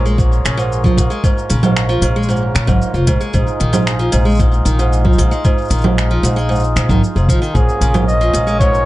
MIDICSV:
0, 0, Header, 1, 6, 480
1, 0, Start_track
1, 0, Key_signature, -5, "minor"
1, 0, Tempo, 526316
1, 1132, Time_signature, 4, 2, 24, 8
1, 8074, End_track
2, 0, Start_track
2, 0, Title_t, "Flugelhorn"
2, 0, Program_c, 0, 56
2, 6875, Note_on_c, 0, 68, 87
2, 7329, Note_off_c, 0, 68, 0
2, 7359, Note_on_c, 0, 75, 92
2, 7812, Note_off_c, 0, 75, 0
2, 7835, Note_on_c, 0, 73, 102
2, 8074, Note_off_c, 0, 73, 0
2, 8074, End_track
3, 0, Start_track
3, 0, Title_t, "Harmonium"
3, 0, Program_c, 1, 20
3, 0, Note_on_c, 1, 58, 71
3, 0, Note_on_c, 1, 65, 59
3, 0, Note_on_c, 1, 68, 59
3, 0, Note_on_c, 1, 73, 73
3, 1118, Note_off_c, 1, 68, 0
3, 1124, Note_on_c, 1, 70, 58
3, 3018, Note_off_c, 1, 58, 0
3, 3018, Note_off_c, 1, 65, 0
3, 3019, Note_off_c, 1, 73, 0
3, 3029, Note_off_c, 1, 70, 0
3, 3065, Note_on_c, 1, 65, 63
3, 3068, Note_on_c, 1, 68, 77
3, 3069, Note_on_c, 1, 63, 74
3, 6864, Note_off_c, 1, 63, 0
3, 6886, Note_on_c, 1, 61, 75
3, 6891, Note_on_c, 1, 58, 72
3, 8074, Note_off_c, 1, 58, 0
3, 8074, Note_off_c, 1, 61, 0
3, 8074, Note_off_c, 1, 65, 0
3, 8074, Note_off_c, 1, 68, 0
3, 8074, End_track
4, 0, Start_track
4, 0, Title_t, "Steel-string acoustic guitar"
4, 0, Program_c, 2, 25
4, 50, Note_on_c, 2, 56, 67
4, 159, Note_off_c, 2, 56, 0
4, 165, Note_on_c, 2, 44, 73
4, 396, Note_off_c, 2, 44, 0
4, 409, Note_on_c, 2, 49, 68
4, 518, Note_off_c, 2, 49, 0
4, 524, Note_on_c, 2, 44, 93
4, 756, Note_off_c, 2, 44, 0
4, 765, Note_on_c, 2, 53, 63
4, 876, Note_off_c, 2, 53, 0
4, 890, Note_on_c, 2, 44, 86
4, 999, Note_off_c, 2, 44, 0
4, 1004, Note_on_c, 2, 56, 68
4, 1116, Note_off_c, 2, 56, 0
4, 1128, Note_on_c, 2, 44, 75
4, 1358, Note_off_c, 2, 44, 0
4, 1363, Note_on_c, 2, 49, 67
4, 1476, Note_off_c, 2, 49, 0
4, 1486, Note_on_c, 2, 44, 86
4, 1717, Note_off_c, 2, 44, 0
4, 1723, Note_on_c, 2, 53, 71
4, 1835, Note_off_c, 2, 53, 0
4, 1845, Note_on_c, 2, 44, 98
4, 1957, Note_off_c, 2, 44, 0
4, 1970, Note_on_c, 2, 56, 74
4, 2079, Note_off_c, 2, 56, 0
4, 2085, Note_on_c, 2, 44, 78
4, 2316, Note_off_c, 2, 44, 0
4, 2323, Note_on_c, 2, 49, 68
4, 2435, Note_off_c, 2, 49, 0
4, 2438, Note_on_c, 2, 44, 90
4, 2673, Note_off_c, 2, 44, 0
4, 2682, Note_on_c, 2, 53, 61
4, 2795, Note_off_c, 2, 53, 0
4, 2802, Note_on_c, 2, 44, 91
4, 2915, Note_off_c, 2, 44, 0
4, 2923, Note_on_c, 2, 56, 71
4, 3035, Note_off_c, 2, 56, 0
4, 3042, Note_on_c, 2, 44, 82
4, 3275, Note_off_c, 2, 44, 0
4, 3283, Note_on_c, 2, 51, 66
4, 3395, Note_off_c, 2, 51, 0
4, 3399, Note_on_c, 2, 44, 86
4, 3633, Note_off_c, 2, 44, 0
4, 3640, Note_on_c, 2, 53, 72
4, 3754, Note_off_c, 2, 53, 0
4, 3758, Note_on_c, 2, 44, 101
4, 3873, Note_off_c, 2, 44, 0
4, 3878, Note_on_c, 2, 56, 69
4, 3993, Note_off_c, 2, 56, 0
4, 4007, Note_on_c, 2, 44, 79
4, 4238, Note_off_c, 2, 44, 0
4, 4242, Note_on_c, 2, 51, 76
4, 4355, Note_off_c, 2, 51, 0
4, 4369, Note_on_c, 2, 44, 98
4, 4599, Note_off_c, 2, 44, 0
4, 4602, Note_on_c, 2, 53, 66
4, 4715, Note_off_c, 2, 53, 0
4, 4727, Note_on_c, 2, 44, 94
4, 4837, Note_off_c, 2, 44, 0
4, 4845, Note_on_c, 2, 56, 75
4, 4956, Note_off_c, 2, 56, 0
4, 4966, Note_on_c, 2, 44, 79
4, 5197, Note_off_c, 2, 44, 0
4, 5200, Note_on_c, 2, 51, 63
4, 5314, Note_off_c, 2, 51, 0
4, 5326, Note_on_c, 2, 44, 91
4, 5557, Note_off_c, 2, 44, 0
4, 5570, Note_on_c, 2, 53, 72
4, 5679, Note_off_c, 2, 53, 0
4, 5685, Note_on_c, 2, 44, 98
4, 5796, Note_off_c, 2, 44, 0
4, 5803, Note_on_c, 2, 56, 74
4, 5915, Note_off_c, 2, 56, 0
4, 5918, Note_on_c, 2, 44, 75
4, 6033, Note_off_c, 2, 44, 0
4, 6164, Note_on_c, 2, 44, 68
4, 6276, Note_off_c, 2, 44, 0
4, 6288, Note_on_c, 2, 51, 72
4, 6398, Note_off_c, 2, 51, 0
4, 6529, Note_on_c, 2, 44, 63
4, 6638, Note_off_c, 2, 44, 0
4, 6647, Note_on_c, 2, 53, 70
4, 6758, Note_off_c, 2, 53, 0
4, 6764, Note_on_c, 2, 51, 69
4, 6876, Note_off_c, 2, 51, 0
4, 6884, Note_on_c, 2, 44, 77
4, 7116, Note_off_c, 2, 44, 0
4, 7125, Note_on_c, 2, 49, 64
4, 7237, Note_off_c, 2, 49, 0
4, 7243, Note_on_c, 2, 44, 91
4, 7475, Note_off_c, 2, 44, 0
4, 7486, Note_on_c, 2, 53, 76
4, 7597, Note_off_c, 2, 53, 0
4, 7601, Note_on_c, 2, 44, 89
4, 7714, Note_off_c, 2, 44, 0
4, 7723, Note_on_c, 2, 56, 67
4, 7835, Note_off_c, 2, 56, 0
4, 7849, Note_on_c, 2, 44, 80
4, 8074, Note_off_c, 2, 44, 0
4, 8074, End_track
5, 0, Start_track
5, 0, Title_t, "Upright bass"
5, 0, Program_c, 3, 32
5, 0, Note_on_c, 3, 34, 74
5, 381, Note_off_c, 3, 34, 0
5, 411, Note_on_c, 3, 34, 76
5, 862, Note_off_c, 3, 34, 0
5, 885, Note_on_c, 3, 34, 68
5, 990, Note_off_c, 3, 34, 0
5, 1373, Note_on_c, 3, 34, 81
5, 1822, Note_off_c, 3, 34, 0
5, 1839, Note_on_c, 3, 34, 72
5, 2296, Note_off_c, 3, 34, 0
5, 2330, Note_on_c, 3, 46, 94
5, 2432, Note_off_c, 3, 46, 0
5, 2445, Note_on_c, 3, 32, 86
5, 2550, Note_off_c, 3, 32, 0
5, 2680, Note_on_c, 3, 29, 82
5, 2787, Note_off_c, 3, 29, 0
5, 2804, Note_on_c, 3, 34, 70
5, 2909, Note_off_c, 3, 34, 0
5, 3045, Note_on_c, 3, 34, 84
5, 3150, Note_off_c, 3, 34, 0
5, 3290, Note_on_c, 3, 34, 81
5, 3741, Note_off_c, 3, 34, 0
5, 3772, Note_on_c, 3, 34, 76
5, 4222, Note_off_c, 3, 34, 0
5, 4246, Note_on_c, 3, 34, 82
5, 4699, Note_off_c, 3, 34, 0
5, 4726, Note_on_c, 3, 34, 75
5, 4830, Note_off_c, 3, 34, 0
5, 5202, Note_on_c, 3, 34, 81
5, 5657, Note_off_c, 3, 34, 0
5, 5684, Note_on_c, 3, 34, 74
5, 6138, Note_off_c, 3, 34, 0
5, 6166, Note_on_c, 3, 46, 91
5, 6270, Note_off_c, 3, 46, 0
5, 6285, Note_on_c, 3, 32, 92
5, 6390, Note_off_c, 3, 32, 0
5, 6528, Note_on_c, 3, 29, 84
5, 6631, Note_off_c, 3, 29, 0
5, 6645, Note_on_c, 3, 34, 72
5, 6750, Note_off_c, 3, 34, 0
5, 6884, Note_on_c, 3, 34, 83
5, 6989, Note_off_c, 3, 34, 0
5, 7121, Note_on_c, 3, 34, 81
5, 7577, Note_off_c, 3, 34, 0
5, 7609, Note_on_c, 3, 34, 71
5, 8061, Note_off_c, 3, 34, 0
5, 8074, End_track
6, 0, Start_track
6, 0, Title_t, "Drums"
6, 57, Note_on_c, 9, 82, 29
6, 148, Note_off_c, 9, 82, 0
6, 169, Note_on_c, 9, 36, 89
6, 176, Note_on_c, 9, 82, 39
6, 261, Note_off_c, 9, 36, 0
6, 267, Note_off_c, 9, 82, 0
6, 298, Note_on_c, 9, 82, 20
6, 389, Note_off_c, 9, 82, 0
6, 416, Note_on_c, 9, 26, 76
6, 416, Note_on_c, 9, 42, 82
6, 417, Note_on_c, 9, 82, 68
6, 507, Note_off_c, 9, 26, 0
6, 507, Note_off_c, 9, 42, 0
6, 508, Note_off_c, 9, 82, 0
6, 538, Note_on_c, 9, 82, 33
6, 629, Note_off_c, 9, 82, 0
6, 660, Note_on_c, 9, 82, 36
6, 751, Note_off_c, 9, 82, 0
6, 768, Note_on_c, 9, 36, 88
6, 780, Note_on_c, 9, 64, 53
6, 781, Note_on_c, 9, 82, 20
6, 860, Note_off_c, 9, 36, 0
6, 871, Note_off_c, 9, 64, 0
6, 873, Note_off_c, 9, 82, 0
6, 888, Note_on_c, 9, 36, 60
6, 897, Note_on_c, 9, 42, 86
6, 898, Note_on_c, 9, 82, 65
6, 979, Note_off_c, 9, 36, 0
6, 988, Note_off_c, 9, 42, 0
6, 990, Note_off_c, 9, 82, 0
6, 1013, Note_on_c, 9, 82, 30
6, 1104, Note_off_c, 9, 82, 0
6, 1129, Note_on_c, 9, 36, 109
6, 1135, Note_on_c, 9, 82, 47
6, 1220, Note_off_c, 9, 36, 0
6, 1226, Note_off_c, 9, 82, 0
6, 1262, Note_on_c, 9, 82, 22
6, 1354, Note_off_c, 9, 82, 0
6, 1369, Note_on_c, 9, 42, 82
6, 1370, Note_on_c, 9, 82, 78
6, 1460, Note_off_c, 9, 42, 0
6, 1461, Note_off_c, 9, 82, 0
6, 1488, Note_on_c, 9, 64, 72
6, 1489, Note_on_c, 9, 82, 33
6, 1579, Note_off_c, 9, 64, 0
6, 1580, Note_off_c, 9, 82, 0
6, 1610, Note_on_c, 9, 26, 78
6, 1611, Note_on_c, 9, 82, 41
6, 1701, Note_off_c, 9, 26, 0
6, 1702, Note_off_c, 9, 82, 0
6, 1733, Note_on_c, 9, 82, 20
6, 1824, Note_off_c, 9, 82, 0
6, 1844, Note_on_c, 9, 42, 79
6, 1845, Note_on_c, 9, 82, 74
6, 1935, Note_off_c, 9, 42, 0
6, 1936, Note_off_c, 9, 82, 0
6, 2033, Note_on_c, 9, 82, 32
6, 2096, Note_off_c, 9, 82, 0
6, 2096, Note_on_c, 9, 82, 39
6, 2155, Note_off_c, 9, 82, 0
6, 2155, Note_on_c, 9, 82, 20
6, 2246, Note_off_c, 9, 82, 0
6, 2331, Note_on_c, 9, 26, 72
6, 2331, Note_on_c, 9, 42, 78
6, 2332, Note_on_c, 9, 82, 72
6, 2422, Note_off_c, 9, 26, 0
6, 2422, Note_off_c, 9, 42, 0
6, 2424, Note_off_c, 9, 82, 0
6, 2445, Note_on_c, 9, 36, 92
6, 2448, Note_on_c, 9, 64, 60
6, 2449, Note_on_c, 9, 82, 35
6, 2536, Note_off_c, 9, 36, 0
6, 2539, Note_off_c, 9, 64, 0
6, 2541, Note_off_c, 9, 82, 0
6, 2571, Note_on_c, 9, 82, 37
6, 2662, Note_off_c, 9, 82, 0
6, 2689, Note_on_c, 9, 82, 20
6, 2780, Note_off_c, 9, 82, 0
6, 2802, Note_on_c, 9, 42, 79
6, 2803, Note_on_c, 9, 82, 71
6, 2806, Note_on_c, 9, 36, 98
6, 2893, Note_off_c, 9, 42, 0
6, 2894, Note_off_c, 9, 82, 0
6, 2898, Note_off_c, 9, 36, 0
6, 2926, Note_on_c, 9, 82, 29
6, 3017, Note_off_c, 9, 82, 0
6, 3042, Note_on_c, 9, 82, 45
6, 3048, Note_on_c, 9, 36, 100
6, 3133, Note_off_c, 9, 82, 0
6, 3139, Note_off_c, 9, 36, 0
6, 3171, Note_on_c, 9, 82, 20
6, 3263, Note_off_c, 9, 82, 0
6, 3289, Note_on_c, 9, 42, 78
6, 3380, Note_off_c, 9, 42, 0
6, 3405, Note_on_c, 9, 64, 73
6, 3407, Note_on_c, 9, 82, 84
6, 3497, Note_off_c, 9, 64, 0
6, 3498, Note_off_c, 9, 82, 0
6, 3530, Note_on_c, 9, 26, 75
6, 3532, Note_on_c, 9, 82, 44
6, 3622, Note_off_c, 9, 26, 0
6, 3623, Note_off_c, 9, 82, 0
6, 3649, Note_on_c, 9, 82, 20
6, 3740, Note_off_c, 9, 82, 0
6, 3762, Note_on_c, 9, 42, 78
6, 3763, Note_on_c, 9, 82, 74
6, 3853, Note_off_c, 9, 42, 0
6, 3854, Note_off_c, 9, 82, 0
6, 3885, Note_on_c, 9, 82, 14
6, 3912, Note_off_c, 9, 82, 0
6, 3912, Note_on_c, 9, 82, 17
6, 3934, Note_off_c, 9, 82, 0
6, 3934, Note_on_c, 9, 82, 19
6, 3964, Note_off_c, 9, 82, 0
6, 3964, Note_on_c, 9, 82, 24
6, 3983, Note_off_c, 9, 82, 0
6, 3983, Note_on_c, 9, 82, 25
6, 4007, Note_on_c, 9, 36, 90
6, 4008, Note_off_c, 9, 82, 0
6, 4008, Note_on_c, 9, 82, 39
6, 4099, Note_off_c, 9, 36, 0
6, 4099, Note_off_c, 9, 82, 0
6, 4136, Note_on_c, 9, 82, 21
6, 4227, Note_off_c, 9, 82, 0
6, 4249, Note_on_c, 9, 42, 78
6, 4250, Note_on_c, 9, 82, 76
6, 4340, Note_off_c, 9, 42, 0
6, 4341, Note_off_c, 9, 82, 0
6, 4371, Note_on_c, 9, 82, 36
6, 4462, Note_off_c, 9, 82, 0
6, 4495, Note_on_c, 9, 82, 41
6, 4586, Note_off_c, 9, 82, 0
6, 4608, Note_on_c, 9, 36, 108
6, 4612, Note_on_c, 9, 64, 50
6, 4678, Note_on_c, 9, 82, 20
6, 4699, Note_off_c, 9, 36, 0
6, 4703, Note_off_c, 9, 64, 0
6, 4729, Note_on_c, 9, 36, 55
6, 4733, Note_on_c, 9, 42, 73
6, 4734, Note_off_c, 9, 82, 0
6, 4734, Note_on_c, 9, 82, 71
6, 4820, Note_off_c, 9, 36, 0
6, 4824, Note_off_c, 9, 42, 0
6, 4825, Note_off_c, 9, 82, 0
6, 4852, Note_on_c, 9, 82, 32
6, 4943, Note_off_c, 9, 82, 0
6, 4967, Note_on_c, 9, 82, 42
6, 4969, Note_on_c, 9, 36, 104
6, 5059, Note_off_c, 9, 82, 0
6, 5060, Note_off_c, 9, 36, 0
6, 5091, Note_on_c, 9, 82, 10
6, 5121, Note_off_c, 9, 82, 0
6, 5121, Note_on_c, 9, 82, 11
6, 5151, Note_off_c, 9, 82, 0
6, 5151, Note_on_c, 9, 82, 13
6, 5181, Note_off_c, 9, 82, 0
6, 5181, Note_on_c, 9, 82, 13
6, 5206, Note_on_c, 9, 42, 79
6, 5207, Note_off_c, 9, 82, 0
6, 5207, Note_on_c, 9, 82, 70
6, 5237, Note_off_c, 9, 82, 0
6, 5237, Note_on_c, 9, 82, 16
6, 5273, Note_off_c, 9, 82, 0
6, 5273, Note_on_c, 9, 82, 17
6, 5297, Note_off_c, 9, 42, 0
6, 5301, Note_off_c, 9, 82, 0
6, 5301, Note_on_c, 9, 82, 19
6, 5330, Note_on_c, 9, 64, 78
6, 5392, Note_off_c, 9, 82, 0
6, 5422, Note_off_c, 9, 64, 0
6, 5456, Note_on_c, 9, 26, 70
6, 5457, Note_on_c, 9, 82, 42
6, 5547, Note_off_c, 9, 26, 0
6, 5549, Note_off_c, 9, 82, 0
6, 5697, Note_on_c, 9, 42, 74
6, 5698, Note_on_c, 9, 82, 78
6, 5788, Note_off_c, 9, 42, 0
6, 5789, Note_off_c, 9, 82, 0
6, 5820, Note_on_c, 9, 82, 28
6, 5912, Note_off_c, 9, 82, 0
6, 5940, Note_on_c, 9, 82, 17
6, 5977, Note_off_c, 9, 82, 0
6, 5977, Note_on_c, 9, 82, 26
6, 6015, Note_off_c, 9, 82, 0
6, 6015, Note_on_c, 9, 82, 30
6, 6055, Note_off_c, 9, 82, 0
6, 6055, Note_on_c, 9, 82, 23
6, 6146, Note_off_c, 9, 82, 0
6, 6171, Note_on_c, 9, 26, 62
6, 6171, Note_on_c, 9, 42, 81
6, 6172, Note_on_c, 9, 82, 74
6, 6262, Note_off_c, 9, 26, 0
6, 6262, Note_off_c, 9, 42, 0
6, 6264, Note_off_c, 9, 82, 0
6, 6286, Note_on_c, 9, 36, 99
6, 6293, Note_on_c, 9, 64, 59
6, 6295, Note_on_c, 9, 82, 35
6, 6377, Note_off_c, 9, 36, 0
6, 6384, Note_off_c, 9, 64, 0
6, 6386, Note_off_c, 9, 82, 0
6, 6419, Note_on_c, 9, 82, 38
6, 6510, Note_off_c, 9, 82, 0
6, 6540, Note_on_c, 9, 82, 21
6, 6631, Note_off_c, 9, 82, 0
6, 6645, Note_on_c, 9, 36, 106
6, 6656, Note_on_c, 9, 42, 78
6, 6657, Note_on_c, 9, 82, 74
6, 6736, Note_off_c, 9, 36, 0
6, 6747, Note_off_c, 9, 42, 0
6, 6748, Note_off_c, 9, 82, 0
6, 6776, Note_on_c, 9, 82, 33
6, 6867, Note_off_c, 9, 82, 0
6, 6886, Note_on_c, 9, 36, 108
6, 6895, Note_on_c, 9, 82, 41
6, 6977, Note_off_c, 9, 36, 0
6, 6987, Note_off_c, 9, 82, 0
6, 7014, Note_on_c, 9, 82, 22
6, 7105, Note_off_c, 9, 82, 0
6, 7128, Note_on_c, 9, 42, 82
6, 7129, Note_on_c, 9, 82, 66
6, 7219, Note_off_c, 9, 42, 0
6, 7220, Note_off_c, 9, 82, 0
6, 7251, Note_on_c, 9, 64, 81
6, 7252, Note_on_c, 9, 82, 32
6, 7342, Note_off_c, 9, 64, 0
6, 7343, Note_off_c, 9, 82, 0
6, 7375, Note_on_c, 9, 82, 45
6, 7466, Note_off_c, 9, 82, 0
6, 7496, Note_on_c, 9, 82, 20
6, 7587, Note_off_c, 9, 82, 0
6, 7611, Note_on_c, 9, 42, 77
6, 7612, Note_on_c, 9, 82, 70
6, 7702, Note_off_c, 9, 42, 0
6, 7704, Note_off_c, 9, 82, 0
6, 7730, Note_on_c, 9, 82, 30
6, 7821, Note_off_c, 9, 82, 0
6, 7844, Note_on_c, 9, 36, 89
6, 7852, Note_on_c, 9, 82, 39
6, 7935, Note_off_c, 9, 36, 0
6, 7943, Note_off_c, 9, 82, 0
6, 7975, Note_on_c, 9, 82, 21
6, 8067, Note_off_c, 9, 82, 0
6, 8074, End_track
0, 0, End_of_file